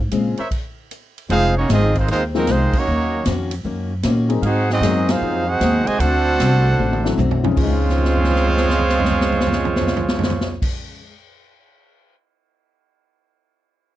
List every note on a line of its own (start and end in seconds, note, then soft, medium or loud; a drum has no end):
0.00 0.11 G#2 medium
0.11 0.37 A#2 medium
0.11 0.39 C#3 medium
0.11 0.39 G#3 medium
0.11 0.40 C4 medium
0.11 0.40 F4 medium
0.11 hi-hat pedal medium
0.11 ride medium
0.37 0.47 A#4 medium
0.37 0.47 C5 medium
0.37 0.47 C#5 medium
0.37 0.47 E5 loud
0.37 muted upright bass stroke soft
0.37 ride medium
0.51 kick medium
0.51 crash medium
0.51 ride medium
0.91 hi-hat pedal soft
0.91 ride medium
1.18 ride soft
1.29 1.68 F1 medium
1.29 1.57 F2 medium
1.29 1.57 D#3 medium
1.29 1.57 G#3 medium
1.29 1.55 G#3 loud
1.29 1.54 C4 loud
1.29 1.58 C4 medium
1.29 1.55 D#4 loud
1.29 1.54 F4 loud
1.29 1.55 G#4 loud
1.29 1.55 C5 medium
1.29 1.55 F5 loud
1.29 ride medium
1.57 1.69 A#3 medium
1.57 1.69 C#4 medium
1.57 1.69 D#4 medium
1.57 1.69 F#4 medium
1.57 1.69 C#5 medium
1.68 2.07 G#1 loud
1.68 1.96 F2 medium
1.68 1.96 D#3 medium
1.68 1.97 G#3 medium
1.68 1.94 G#3 medium
1.68 1.97 C4 medium
1.68 1.94 C4 medium
1.68 1.94 D#4 medium
1.68 1.94 F4 medium
1.68 1.95 G#4 loud
1.68 1.94 D#5 loud
1.68 snare medium
1.68 hi-hat pedal medium
1.68 ride medium
1.72 1.95 C4 medium
1.95 2.09 D#3 medium
1.95 2.09 G#3 medium
1.95 2.09 C4 medium
1.95 2.10 D#4 medium
1.95 2.10 F4 medium
1.95 2.10 C5 loud
1.95 kick medium
1.95 ride soft
2.08 2.46 D#2 medium
2.08 2.35 F2 medium
2.08 2.36 D#3 medium
2.08 2.22 D#3 medium
2.08 2.36 G#3 medium
2.08 2.22 G#3 medium
2.08 2.36 C4 medium
2.08 2.22 C4 medium
2.08 2.22 D#4 medium
2.08 2.22 F4 medium
2.08 2.22 C5 medium
2.08 ride medium
2.35 2.46 F3 medium
2.35 2.47 F#3 medium
2.35 2.46 G#3 medium
2.35 2.48 A#3 medium
2.35 2.46 C4 medium
2.35 2.47 C4 medium
2.35 2.47 D#4 medium
2.35 2.48 D#4 medium
2.35 2.47 F4 medium
2.35 2.48 A#4 medium
2.35 snare soft
2.47 2.72 C2 medium
2.47 2.75 F2 medium
2.47 2.75 D#3 medium
2.47 2.75 G#3 medium
2.47 2.75 C4 medium
2.47 2.75 D#4 medium
2.47 2.75 F4 medium
2.47 2.75 C5 medium
2.47 snare medium
2.47 hi-hat pedal medium
2.47 ride medium
2.51 2.75 D#3 medium
2.51 2.75 G#3 medium
2.51 2.76 C4 medium
2.73 3.27 F#3 medium
2.73 3.27 A#3 medium
2.73 3.27 C#4 medium
2.73 muted upright bass stroke soft
2.73 kick loud
2.73 crash medium
2.77 3.28 A#3 medium
2.77 3.28 D#4 medium
2.77 3.28 F#4 medium
2.77 3.28 C#5 loud
2.85 3.25 D#2 medium
2.85 3.13 D#3 soft
2.85 3.14 A#3 soft
2.85 3.14 C#4 medium
2.85 3.15 F#4 medium
3.25 3.64 F2 medium
3.25 3.53 D#3 medium
3.25 3.53 A#3 medium
3.25 3.53 C#4 medium
3.25 3.53 F#4 loud
3.25 snare medium
3.25 hi-hat pedal medium
3.25 ride medium
3.51 ride medium
3.64 4.03 F#2 medium
3.64 3.92 D#3 medium
3.64 3.92 A#3 medium
3.64 3.93 C#4 medium
3.64 3.93 F#4 medium
4.03 4.41 A#2 loud
4.03 4.32 D#3 medium
4.03 4.32 A#3 medium
4.03 4.33 C#4 medium
4.03 4.33 F#4 medium
4.03 snare medium
4.03 hi-hat pedal medium
4.03 ride medium
4.29 4.41 F#3 medium
4.29 4.41 A#3 medium
4.29 4.41 C4 medium
4.29 4.41 D#4 medium
4.29 4.41 G#4 medium
4.29 ride medium
4.42 4.80 G#2 medium
4.42 4.71 G#2 medium
4.42 4.72 F#3 medium
4.42 4.69 C4 medium
4.42 4.72 C4 medium
4.42 4.69 D#4 medium
4.42 4.70 D#4 loud
4.42 4.69 F#4 medium
4.42 4.70 G#4 medium
4.42 4.70 C5 loud
4.42 4.44 F5 medium
4.42 4.70 F#5 loud
4.42 ride medium
4.47 4.72 D#4 medium
4.70 5.06 F#3 medium
4.70 5.07 C4 medium
4.70 5.06 D#4 medium
4.70 5.07 F#4 medium
4.70 5.07 G#4 medium
4.70 5.07 D#5 loud
4.70 snare soft
4.81 5.19 F#2 medium
4.81 5.09 G#2 medium
4.81 5.42 F#3 medium
4.81 5.10 F#3 medium
4.81 5.42 A#3 medium
4.81 5.42 C4 medium
4.81 5.10 C4 medium
4.81 5.42 D#4 medium
4.81 5.10 D#4 medium
4.81 5.42 G#4 medium
4.81 snare medium
4.81 hi-hat pedal medium
4.81 ride medium
5.07 5.47 F#3 medium
5.07 5.45 C4 medium
5.07 5.46 D#4 medium
5.07 5.47 F4 medium
5.07 5.46 G#4 medium
5.07 5.46 C5 medium
5.07 5.48 F5 loud
5.07 snare loud
5.07 ride medium
5.21 5.59 F2 medium
5.21 5.49 G#2 medium
5.21 5.49 F#3 medium
5.21 5.50 C4 medium
5.21 5.50 D#4 medium
5.46 5.86 C4 loud
5.46 5.86 D#4 medium
5.46 5.87 D#4 medium
5.46 5.86 F#4 medium
5.46 5.86 G#4 medium
5.46 5.86 C5 medium
5.46 5.86 F#5 loud
5.60 5.85 D#2 medium
5.60 5.88 G#2 medium
5.60 5.88 F#3 medium
5.60 5.88 C4 medium
5.60 5.89 D#4 medium
5.60 snare medium
5.60 hi-hat pedal medium
5.60 ride medium
5.85 5.99 C3 medium
5.85 5.99 D#3 medium
5.85 5.99 G#3 medium
5.85 6.00 F#4 medium
5.85 5.99 C5 medium
5.85 6.00 D#5 medium
5.85 6.00 G#5 loud
5.85 muted upright bass stroke soft
5.85 ride medium
5.97 6.37 D2 loud
5.97 6.27 D3 medium
5.97 7.16 A3 loud
5.97 7.16 C4 loud
5.97 7.17 D4 loud
5.97 7.16 F#4 loud
5.97 7.17 A4 loud
5.97 7.17 C5 loud
5.97 7.17 F#5 loud
5.97 ride medium
6.02 6.28 A3 soft
6.02 6.28 C4 soft
6.02 6.28 F#4 medium
6.39 6.77 C2 loud
6.39 6.66 D3 medium
6.39 6.66 A3 medium
6.39 6.67 C4 medium
6.39 6.67 F#4 medium
6.39 snare medium
6.39 hi-hat pedal medium
6.39 ride medium
6.76 7.16 A1 loud
6.76 7.04 D3 medium
6.76 7.05 A3 medium
6.76 7.05 C4 medium
6.76 7.05 F#4 medium
6.76 mid tom medium
6.93 mid tom medium
7.04 7.16 F#3 medium
7.04 7.16 C4 medium
7.04 7.16 D4 medium
7.04 7.16 E4 medium
7.04 7.16 A4 medium
7.04 snare medium
7.17 7.55 B1 loud
7.17 7.45 D3 medium
7.17 7.45 A3 medium
7.17 7.45 C4 medium
7.17 7.45 F#4 medium
7.17 floor tom medium
7.17 hi-hat pedal medium
7.31 floor tom medium
7.43 10.62 C#3 medium
7.43 7.55 F3 medium
7.43 7.55 C4 medium
7.43 7.55 C#4 medium
7.43 7.55 D#4 medium
7.43 7.56 G#4 medium
7.43 floor tom loud
7.51 11.01 C#3 medium
7.51 10.65 G#3 medium
7.56 10.64 C#2 loud
7.56 10.63 C#3 loud
7.56 11.08 F3 medium
7.56 10.64 G#3 medium
7.56 10.64 G#3 loud
7.56 10.63 C4 loud
7.56 10.63 F4 loud
7.56 10.64 F4 loud
7.56 10.64 C5 medium
7.56 10.64 C#5 loud
7.56 kick loud
7.56 crash loud
7.62 11.12 G#3 medium
7.62 10.71 D#4 medium
7.70 10.74 F4 medium
7.84 floor tom soft
7.89 snare medium
7.95 10.63 G#4 soft
7.95 floor tom medium
8.03 10.67 C5 soft
8.03 snare medium
8.11 10.71 D#5 soft
8.16 floor tom medium
8.20 10.76 G#5 soft
8.24 snare medium
8.30 10.81 C6 soft
8.30 floor tom medium
8.36 snare soft
8.41 10.87 D#6 soft
8.47 floor tom medium
8.53 10.92 G#6 soft
8.57 snare medium
8.64 floor tom medium
8.70 snare medium
8.78 floor tom medium
8.89 snare medium
9.00 floor tom medium
9.05 snare medium
9.11 floor tom medium
9.21 snare medium
9.32 floor tom medium
9.41 snare medium
9.47 floor tom medium
9.52 snare medium
9.65 floor tom medium
9.76 snare medium
9.81 floor tom medium
9.87 snare medium
9.97 floor tom medium
10.08 snare medium
10.19 floor tom medium
10.23 snare loud
10.30 floor tom medium
10.41 snare medium
10.62 kick loud
10.62 crash medium